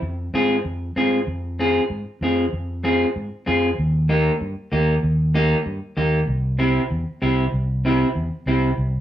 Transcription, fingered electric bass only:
0.02 F2
0.34 G#2
0.65 F2
0.96 G#2
1.27 F2
1.90 G#2
2.21 F2
2.53 F2
3.16 G#2
3.47 F2
3.78 D#2
4.41 G2
4.72 D#2
5.03 D#2
5.66 G2
5.97 D#2
6.27 C2
6.91 E2
7.22 C2
7.53 C2
8.16 E2
8.46 C2
8.78 C2

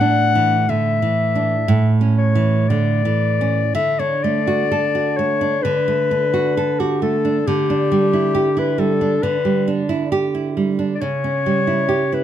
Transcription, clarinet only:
Already playing: F#5
0.70 E5
2.18 C#5
2.70 D5
3.75 E5
4.00 C#5
4.24 D5
5.17 C#5
5.62 B4
6.80 G4
7.02 A4
7.47 G4
8.59 B4
8.80 A4
9.23 B4
10.95 D5
11.01 C#5
12.14 B4

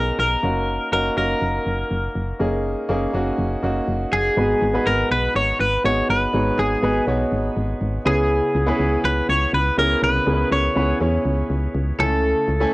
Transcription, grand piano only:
Already playing: B2 B3 C#4 D#4 F#4 G#4
0.43 A#3 C#4 D#4 F#4
0.92 A#3 C#4 D#4 F#4
1.16 A#3 C#4 D#4 F#4
2.39 A#3 C#4 D#4 G#4
2.89 A#3 C#4 D#4 G#4
3.13 A#3 C#4 D#4 F#4
3.63 A#3 C#4 D#4 F#4
4.37 G#2 B3 D#4 F#4 G#4 B4
4.73 B3 D#4 F#4 G#4 B4
5.84 B3 D#4 F#4 G#4 C#5
6.33 G#2 B3 D#4 F#4 G#4 C#5
6.82 B3 D#4 F#4 G#4 B4
7.07 B3 D#4 F#4 G#4 C#5
8.05 C#3 B3 C#4 E4 G#4 B4
8.66 B3 C#4 E4 G#4 B4
9.77 B3 C#4 E4 G#4 A#4
10.02 C#3
10.26 B3 C#4 E4 G#4 A#4
10.34 B4
10.75 B3 C#4 E4 G#4 B4
11.00 B3 C#4 E4 G#4 C#5
11.99 C#3 A3 C#4 E4 A4 G#5
12.60 A3 C#4 E4 A4 G#5

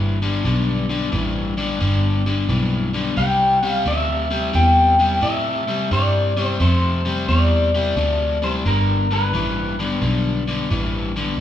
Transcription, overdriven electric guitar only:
Already playing: G2 E3
0.22 G2 D3
0.44 G2 D3
0.89 G2 D3
1.12 G2 E3
1.57 G2 D3
1.80 G2 D3
2.26 G2 D3
2.49 G2 E3
2.93 G2 D3
3.16 C3 G3
3.63 C3 G3
3.85 C3 A3
4.30 C3 G3
4.53 C3 G3
4.99 C3 G3
5.21 C3 A3
5.68 C3 G3
5.91 C3 G3
6.37 C3 G3
6.60 C3 A3
7.05 C3 G3
7.28 C3 G3
7.75 C3 G3
7.97 C3 A3
8.42 C3 G3
8.65 G2 D3
9.11 G2 D3
9.33 G2 E3
9.79 G2 D3
10.01 G2 D3
10.48 G2 D3
10.70 G2 E3
11.16 G2 D3

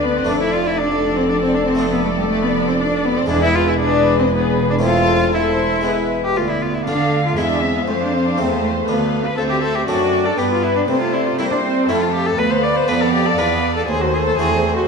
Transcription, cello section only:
Already playing: D3
0.29 F2
3.30 E2
6.36 D2
6.87 D3
7.37 E2
7.87 F2
8.37 E2
8.87 D2
9.37 D2
9.88 F#2
10.38 G2
10.88 C3
11.38 C4
11.88 F2
12.38 D2
12.88 F2
13.38 E2
13.88 D#2
14.38 E2

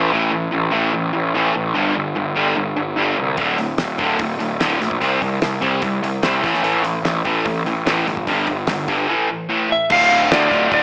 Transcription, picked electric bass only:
0.14 A1
0.53 A1
0.74 A1
0.94 A1
1.15 A1
1.35 A1
1.56 A1
1.76 G1
1.97 G1
2.17 G1
2.36 G1
2.57 G1
2.77 G1
2.98 G1
3.18 C2
3.38 D1
3.80 D1
3.99 D1
4.20 D1
4.39 D1
4.60 D1
4.81 A#1
5.02 C2
5.22 C2
5.41 C2
5.63 C2
5.82 C2
6.02 C2
6.23 C2
6.44 A1
6.63 A1
7.03 A1
7.26 A1
7.46 A1
7.65 A1
7.86 A1
8.06 G1
8.27 G1
8.48 G1
8.68 G1
8.89 G1
9.91 D1
10.11 D1
10.31 D2
10.52 D1
10.72 D1

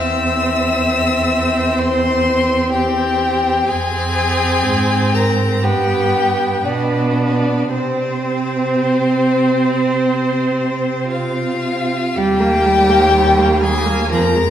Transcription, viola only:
Already playing: C4
3.69 C4
5.63 B3
6.64 B3
7.70 C4
12.17 G3
12.40 A#3
12.66 G3
12.90 A#3
13.13 G3
13.38 A#3
13.62 G3
13.86 A#3
14.11 F3
14.35 G#3

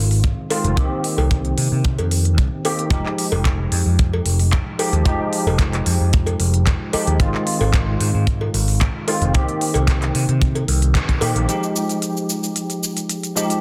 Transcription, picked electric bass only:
Already playing: G#1
0.64 F1
0.77 C2
1.18 C2
1.58 C3
1.72 C3
1.99 F2
2.38 C2
2.91 F1
3.32 F1
3.72 F2
3.86 F2
4.26 F1
4.93 D#2
5.06 F1
5.47 F1
5.86 F2
6.00 F2
6.40 F1
6.94 muted picked electric bass stroke
7.07 D#2
7.20 G#1
7.61 G#1
8.01 G#2
8.15 G#2
8.54 G#1
9.22 F1
9.35 C2
9.75 C2
10.15 C3
10.29 C3
10.68 C2
11.22 A#2
11.36 A#1

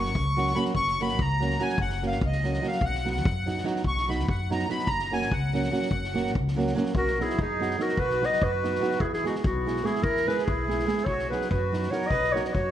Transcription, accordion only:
Already playing: C#6
0.55 B5
0.76 C#6
1.02 B5
1.21 A#5
1.62 G#5
1.81 F#5
2.07 F5
2.26 D#5
2.67 F5
2.85 F#5
3.11 F#5
3.88 C#6
4.09 B5
4.30 F#5
4.52 A#5
4.71 B5
4.87 A#5
5.13 G#5
5.32 F#5
6.97 F#4
7.21 E4
7.40 D#4
7.81 F#4
8.00 F#4
8.24 B4
8.43 F#4
8.99 E4
9.08 E4
9.28 D#4
9.47 B3
9.85 E4
10.03 E4
10.31 G#4
10.48 E4
11.08 F#4
11.33 G#4
11.54 F#4
11.93 A#4
12.10 B4
12.35 A#4
12.49 B4
12.55 F#4

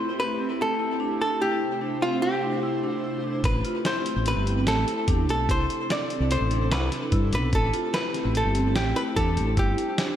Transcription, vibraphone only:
0.39 C4
0.79 E4
1.00 D4
1.41 E4
1.81 D4
2.02 C4
2.43 D4
2.63 E4
2.84 D4
3.04 E4
3.24 D4
3.65 F4
3.85 E4
4.46 C4
4.88 E4
5.08 D4
5.49 E4
5.90 D4
6.10 C4
6.52 D4
6.72 E4
6.93 D4
7.13 E4
7.33 D4
7.74 F4
7.93 E4
8.55 C4
8.96 E4
9.17 D4
9.58 E4
9.98 D4

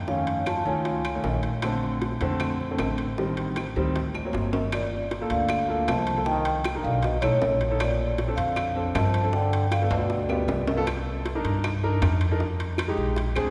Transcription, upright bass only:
Already playing: F2
0.66 C#2
1.24 A#1
2.21 F2
2.79 A1
3.76 D2
4.34 G1
5.30 D2
5.88 C2
6.84 B1
7.23 B1
7.42 A#1
8.37 F2
8.95 G2
9.90 D2
10.48 C2
11.44 G2
12.02 F2
12.97 A#1
13.36 D2

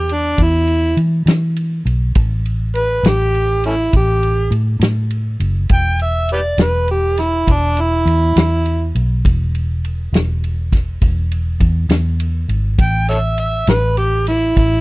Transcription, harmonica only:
Already playing: G4
0.13 D4
0.43 E4
2.77 B4
3.09 G4
3.66 A3 C#4 E4
3.96 G4
5.74 G5
6.02 E5
6.33 G4 B4 D5
6.63 B4
6.91 G4
7.20 E4
7.52 D4
7.80 E4
12.81 G5
13.09 A4 C#5 E5
13.40 E5
13.69 B4
13.98 G4
14.28 E4
14.58 E4

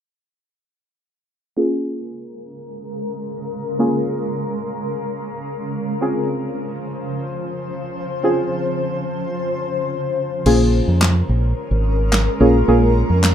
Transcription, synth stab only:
1.57 A#3 C#4 F4 G#4
3.79 A#3 C#4 F4 G#4
6.01 C4 C#4 F4 G#4
8.23 C4 C#4 F4 G#4
10.46 A#3 C#4 F4 G#4
12.40 A#3 C#4 F4 G#4
12.68 A#3 C#4 F4 G#4

